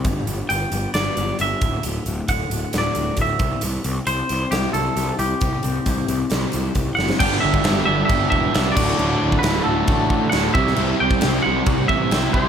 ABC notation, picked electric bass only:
X:1
M:4/4
L:1/8
Q:1/4=134
K:Clyd
V:1 name="Picked electric bass" clef=bass
G,,, G,,, G,,, G,,, G,,, G,,, G,,, D,,, | D,,, D,,, D,,, D,,, D,,, D,,, D,,, C,, | C,, C,, C,, C,, C,, C,, C,, C,, | C,, C,, C,, C,, C,, C,, C,, F,,, |
G,,, G,,, G,,, G,,, G,,, E,,, C,, D,,, | D,,, D,,, D,,, D,,, A,,,2 D,,, C,, | C,, C,, C,, C,, C,, A,,, C,, C,, |]